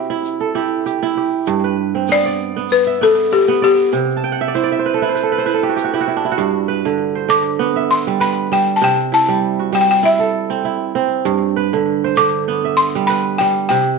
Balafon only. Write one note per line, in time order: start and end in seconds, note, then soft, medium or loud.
0.00 0.21 E5 loud
2.12 2.73 D5 loud
2.72 3.03 B4 medium
3.03 3.33 A4 medium
3.33 3.62 G4 medium
3.64 6.04 G4 medium
7.30 7.92 D6 loud
7.91 8.22 C6 loud
8.21 8.52 B5 medium
8.53 8.77 G5 medium
8.76 8.82 A5 medium
8.84 9.14 G5 medium
9.14 9.70 A5 medium
9.75 9.80 G5 medium
9.81 9.90 G5 medium
9.91 10.05 G5 medium
10.05 10.92 E5 medium
12.17 12.80 D6 loud
12.77 13.09 C6 loud
13.07 13.39 B5 medium
13.38 13.68 G5 loud
13.69 13.98 G5 medium